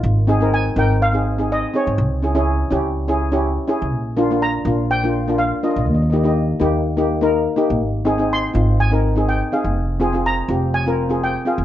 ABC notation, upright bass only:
X:1
M:4/4
L:1/16
Q:"Swing 16ths" 1/4=124
K:Ab
V:1 name="Upright bass" clef=bass
A,,,6 A,,,8 z A,, | D,,6 D,,8 z D,, | B,,,6 B,,,8 z B,,, | E,,6 E,,8 z B,,, |
A,,,6 A,,,8 z _G,,, | F,,,6 F,,,8 z F,,, |]